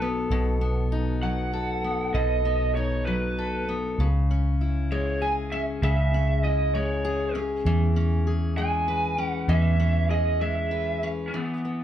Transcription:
0.00 0.27 B1 medium
0.00 0.30 B2 medium
0.00 1.21 F#3 medium
0.00 0.60 B3 medium
0.00 0.91 D#4 medium
0.00 1.52 A4 medium
0.30 2.10 B1 medium
0.30 2.13 B2 medium
0.61 1.83 B3 medium
0.92 2.76 D#4 medium
1.23 3.06 F#3 medium
1.23 2.10 F#5 loud
1.53 3.38 A4 medium
1.84 2.44 B3 medium
2.14 3.95 B1 medium
2.14 3.99 B2 medium
2.14 2.75 D#5 medium
2.45 3.67 B3 medium
2.75 4.06 D#4 medium
2.75 3.04 C#5 medium
3.05 4.06 F#3 medium
3.05 3.71 B4 medium
3.38 4.06 A4 medium
3.69 4.05 B3 medium
3.98 5.78 C#2 medium
3.98 5.82 C#3 medium
4.31 5.52 C#4 medium
4.61 6.44 E4 soft
4.92 6.74 G#3 medium
4.92 5.20 C#5 medium
5.22 7.04 G#4 medium
5.22 5.30 G#5 loud
5.52 6.14 C#4 medium
5.52 5.60 E5 medium
5.82 7.61 C#2 loud
5.82 7.66 C#3 medium
5.82 6.43 E5 medium
6.14 7.35 C#4 medium
6.44 8.26 E4 medium
6.44 6.75 D#5 medium
6.75 8.57 G#3 medium
6.75 7.39 C#5 medium
7.05 8.27 G#4 medium
7.35 7.96 C#4 medium
7.65 9.45 E2 loud
7.65 9.48 E3 medium
7.96 9.17 C#4 medium
8.27 10.09 G#4 medium
8.57 10.40 G#3 medium
8.57 9.24 G#5 loud
8.88 10.71 B4 medium
9.18 9.78 C#4 medium
9.24 9.52 F#5 loud
9.48 11.30 E2 loud
9.48 11.33 E3 medium
9.48 10.10 E5 medium
9.80 11.02 C#4 medium
10.10 11.40 G#4 medium
10.10 10.39 D#5 medium
10.41 11.40 G#3 medium
10.41 11.07 E5 medium
10.71 11.40 B4 medium
11.03 11.40 C#4 medium
11.28 11.34 C#4 medium
11.34 11.84 E3 medium
11.34 11.84 B3 medium
11.65 11.84 B3 soft

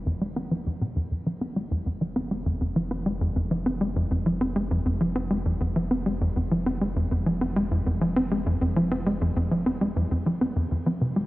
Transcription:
0.00 0.93 F1 medium
0.06 0.17 F2 medium
0.21 0.32 G#3 medium
0.36 0.50 C4 medium
0.51 0.65 F3 medium
0.66 0.80 F2 medium
0.81 0.92 A#2 medium
0.96 10.53 F1 medium
0.96 1.07 F2 medium
1.11 1.25 F2 medium
1.26 1.40 F3 medium
1.41 1.47 C4 medium
1.56 1.67 G#3 medium
1.71 1.82 F2 loud
1.86 2.00 F2 medium
2.01 2.15 F3 medium
2.16 2.22 C4 medium
2.31 2.42 G#3 medium
2.46 2.57 F2 loud
2.61 2.75 F2 medium
2.76 2.90 F3 medium
2.91 2.97 C4 medium
3.06 3.17 G#3 medium
3.21 3.32 F2 loud
3.36 3.50 F2 medium
3.51 3.65 F3 medium
3.66 3.72 C4 medium
3.81 3.92 G#3 medium
3.96 4.07 F2 medium
4.11 4.25 F2 medium
4.26 4.40 F3 medium
4.41 4.47 C4 medium
4.56 4.67 G#3 medium
4.71 4.82 F2 loud
4.86 5.00 F2 medium
5.01 5.15 F3 medium
5.16 5.22 C4 medium
5.31 5.42 G#3 medium
5.46 5.57 F2 medium
5.61 5.75 F2 medium
5.76 5.90 F3 medium
5.91 5.97 C4 medium
6.06 6.17 G#3 medium
6.21 6.32 F2 loud
6.36 6.50 F2 medium
6.51 6.65 F3 medium
6.66 6.73 C4 medium
6.81 6.92 G#3 medium
6.96 7.07 F2 medium
7.11 7.25 F2 medium
7.26 7.40 F3 medium
7.41 7.47 C4 medium
7.56 7.67 G#3 medium
7.71 7.82 F2 loud
7.86 8.00 F2 medium
8.01 8.15 F3 medium
8.16 8.22 C4 medium
8.31 8.42 G#3 medium
8.46 8.57 F2 loud
8.61 8.75 F2 medium
8.76 8.90 F3 medium
8.91 8.98 C4 medium
9.06 9.17 G#3 medium
9.21 9.32 F2 loud
9.36 9.50 F2 medium
9.51 9.65 F3 medium
9.66 9.72 C4 medium
9.81 9.92 G#3 medium
9.96 10.07 F2 loud
10.11 10.25 F2 medium
10.26 10.40 F3 medium
10.41 10.48 C4 medium
10.56 11.27 F1 medium
10.56 10.67 F2 loud
10.71 10.86 F2 medium
10.86 11.01 F3 medium
11.01 11.12 C3 medium
11.16 11.27 G#3 medium

